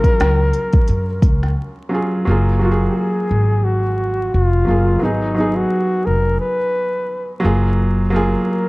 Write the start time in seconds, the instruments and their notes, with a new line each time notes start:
Already playing: felt piano F#3 C#4 F4 G#4 A#4, flugelhorn A#4
0.04 kick, closed hi-hat
0.20 upright bass C#2, snare, closed hi-hat
0.53 closed hi-hat
0.73 kick, closed hi-hat
0.88 upright bass F#2, closed hi-hat
1.22 upright bass C#2, kick, closed hi-hat
1.43 snare
1.89 felt piano F#3 C#4 F4
1.95 felt piano G#4
2.25 upright bass F#1, felt piano F#3 A#3 F4
2.31 felt piano G#4
2.59 felt piano F#3 A#3 F4
2.65 felt piano F#4
2.71 felt piano G#4
2.89 flugelhorn G4
2.96 flugelhorn G#4
3.31 upright bass G#1
3.64 flugelhorn F#4
4.33 upright bass F1, flugelhorn F4
4.65 upright bass F#1, felt piano F#3 A#3 F4
4.70 felt piano G#4
4.99 felt piano F#3 B3 D#4, flugelhorn D#4
5.03 upright bass G#1, felt piano G#4
5.34 felt piano F#3 B3 D#4
5.40 felt piano G#4
5.56 flugelhorn F#4
6.05 upright bass F1, flugelhorn A#4
6.40 flugelhorn B4
7.40 felt piano F#3 A#3 F4
7.45 upright bass F#1, felt piano G#4
8.10 felt piano F#3 A#3 F4
8.16 felt piano G#4
8.47 flugelhorn A#4